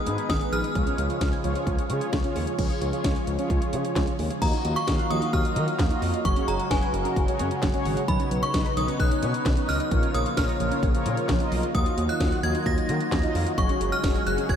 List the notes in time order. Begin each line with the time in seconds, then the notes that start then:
Already playing: D#3 G#3 B3 G#4 D#6
0.06 G#2 D#4 G#4 B4 B5, closed hi-hat
0.18 G#6, closed hi-hat
0.30 G#1 D#3 D#6, kick, snare, closed hi-hat
0.41 B3 D#4 G#4 B4, closed hi-hat
0.52 A#1 G#4 F6, closed hi-hat
0.64 D#5, closed hi-hat
0.75 C#2 C#3 F3 F4 G#4 C#5, kick, closed hi-hat
0.87 C#4, closed hi-hat
0.98 C#2 G#4, closed hi-hat
1.10 F5, closed hi-hat
1.21 C#2 C#6, kick, snare, closed hi-hat
1.33 G#6, closed hi-hat
1.44 C#2 F3 F4 G#4 C#5, closed hi-hat
1.55 C#4, closed hi-hat
1.67 C#2 G#4, kick, closed hi-hat
1.78 F5, closed hi-hat
1.90 C#3 F4 G#4 C#5 C#6, closed hi-hat
2.01 G#6, closed hi-hat
2.13 C#2 F3, kick, snare, closed hi-hat
2.24 C#4 F4 G#4 C#5, closed hi-hat
2.36 D#2 G#4, open hi-hat
2.47 F5, closed hi-hat
2.59 C#2 C#3 F3 G#3 F4 G#4 C#5, kick, closed hi-hat, crash
2.70 C#4, closed hi-hat
2.81 C#2 G#4, closed hi-hat
2.93 F4 G#4 C#5 F5, closed hi-hat
3.04 C#2 C#6, kick, snare, closed hi-hat
3.16 G#6, closed hi-hat
3.27 C#2, closed hi-hat
3.39 C#4 F4 G#4 C#5, closed hi-hat
3.50 C#2 G#4, kick, closed hi-hat
3.62 F5, closed hi-hat
3.73 C#3 C#6, closed hi-hat
3.85 G#6, closed hi-hat
3.96 C#2 F3, kick, snare, clap, closed hi-hat
4.07 C#4, closed hi-hat
4.19 D#2 G#4, open hi-hat
4.30 F5, closed hi-hat
4.42 D#2 D#3 F3 F#3 A#3 F4 F#4 D#5 F5 A#5, kick, closed hi-hat, crash
4.53 D#4, closed hi-hat
4.65 D#2 F#4, closed hi-hat
4.76 F5 C#6, closed hi-hat
4.88 D#2 F4 F#4 F5 D#6, kick, snare, closed hi-hat
4.99 F#6, closed hi-hat
5.10 D#2 F3 F4 F#4 D#5 D#6, closed hi-hat
5.22 D#4, closed hi-hat
5.33 D#2 F#4 F6, kick, closed hi-hat
5.45 F4 F#4 D#5, closed hi-hat
5.56 D#3 D#6, closed hi-hat
5.68 closed hi-hat
5.79 D#2 F3, kick, snare, clap, closed hi-hat
5.90 D#4 F4 F#4 D#5, closed hi-hat
6.02 F2, open hi-hat
6.14 F5, closed hi-hat
6.25 F#1 C#3 F#3 G#3 F#4 G#4 C#5 C#6, kick, closed hi-hat
6.36 C#4, closed hi-hat
6.48 F#1 G#4 A#5, closed hi-hat
6.59 F#5, closed hi-hat
6.71 F#1 F#4 G#4 B4 G#5 C#6, kick, snare, closed hi-hat
6.82 G#6, closed hi-hat
6.94 F#1 F#3 F#4 G#4 A#4, closed hi-hat
7.05 C#4, closed hi-hat
7.16 F#1 G#4, kick, closed hi-hat
7.28 F#4 G#4 C#5, closed hi-hat
7.39 F#2 C#6, closed hi-hat
7.51 closed hi-hat
7.62 F#1 F#3, kick, snare, clap, closed hi-hat
7.74 C#4 F#4 G#4 C#5, closed hi-hat
7.85 G#1, open hi-hat
7.97 F#5, closed hi-hat
8.08 B1 D#3 B3 D#4 B4 C#5 B5, kick, closed hi-hat
8.20 C#4, closed hi-hat
8.31 B1 B4, closed hi-hat
8.43 D#5 C#6, closed hi-hat
8.54 B1 D#4 B4 D#5 C#6, kick, snare, closed hi-hat
8.65 B6, closed hi-hat
8.77 B1 D#3 D#4 B4 C#5 D#6, closed hi-hat
8.88 C#4, closed hi-hat
9.00 B1 B4 F#6, kick, closed hi-hat
9.11 D#4 B4 C#5, closed hi-hat
9.23 B2 C#6, closed hi-hat
9.34 closed hi-hat
9.46 B1 D#3, kick, snare, clap, closed hi-hat
9.57 C#4 D#4 B4 D#5, closed hi-hat
9.69 C#2 F6, open hi-hat
9.80 D#5, closed hi-hat
9.91 A#1 C#3 F3 A#3 F4 A#4 C#5, kick, closed hi-hat
10.03 C#4, closed hi-hat
10.14 A#1 A#4 D#6, closed hi-hat
10.26 F5, closed hi-hat
10.37 A#1 F4 A#4 C#5 C#6 F6, kick, snare, closed hi-hat
10.49 A#6, closed hi-hat
10.60 A#1 F3 F4 A#4 C#5, closed hi-hat
10.71 C#4, closed hi-hat
10.83 A#1 A#4, kick, closed hi-hat
10.95 F4 A#4 C#5, closed hi-hat
11.06 A#2 C#6, closed hi-hat
11.17 closed hi-hat
11.29 A#1 F3, kick, snare, clap, closed hi-hat
11.40 C#4 F4 A#4 D#5, closed hi-hat
11.52 B1, open hi-hat
11.63 F5, closed hi-hat
11.75 D#2 D#3 F3 F#3 A#3 D#4 F4 F#4 D#5 D#6, kick, closed hi-hat
11.86 D#4, closed hi-hat
11.98 D#2 F#4, closed hi-hat
12.09 F5 F#6, closed hi-hat
12.20 D#2 F4 F#4 F#5 D#6, kick, snare, closed hi-hat
12.32 F#6, closed hi-hat
12.43 D#2 F3 F4 F#4 D#5 G#6, closed hi-hat
12.55 D#4, closed hi-hat
12.66 D#2 F#4 A#6, kick, closed hi-hat
12.78 F4 F#4 D#5, closed hi-hat
12.89 D#3 D#6, closed hi-hat
13.01 closed hi-hat
13.12 D#2 F3, kick, snare, clap, closed hi-hat
13.23 D#4 F4 F#4 D#5, closed hi-hat
13.35 F2, open hi-hat
13.46 F5, closed hi-hat
13.58 F#1 C#3 F#3 G#3 F#4 G#4 C#5 C#6, kick, closed hi-hat
13.69 C#4, closed hi-hat
13.81 F#1 G#4, closed hi-hat
13.92 F#5 F6, closed hi-hat
14.04 F#1 F#4 G#4 C#5 C#6, kick, snare, closed hi-hat
14.15 G#6, closed hi-hat
14.27 F#1 F#3 F#4 G#4 C#5 F#6, closed hi-hat
14.38 C#4, closed hi-hat
14.49 F#1 G#4 G#6, kick, closed hi-hat